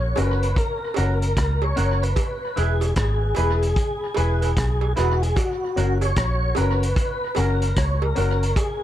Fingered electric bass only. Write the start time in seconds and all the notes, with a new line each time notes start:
Already playing: A#1
0.18 F#1
0.98 F#1
1.37 C#2
1.78 F#1
2.58 E1
2.97 G#1
3.38 E1
4.18 E1
4.57 B1
4.98 E1
5.78 F#1
6.17 A#1
6.58 F#1
7.38 F#1
7.77 C#2
8.18 F#1